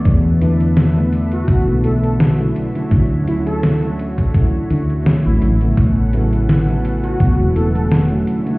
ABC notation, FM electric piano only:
X:1
M:4/4
L:1/16
Q:"Swing 16ths" 1/4=84
K:D
V:1 name="FM electric piano"
[D,E,A,B,E]2 [D,E,A,B,E]3 [D,E,A,B,E]3 [D,E,A,B,E]2 [D,E,A,B,E]3 [D,F,A,CE]2 [D,F,A,CE]- | [D,F,A,CE]2 [D,F,A,CE]3 [D,F,A,CE]3 [D,F,A,CE]2 [D,F,A,CE]3 [D,F,A,CE]2 [C,F,A,B,E]- | [C,F,A,B,E]2 [C,F,A,B,E]3 [C,F,A,B,E]3 [C,F,A,B,E]2 [C,F,A,B,E]3 [D,F,A,CE]2 [D,F,A,CE] |]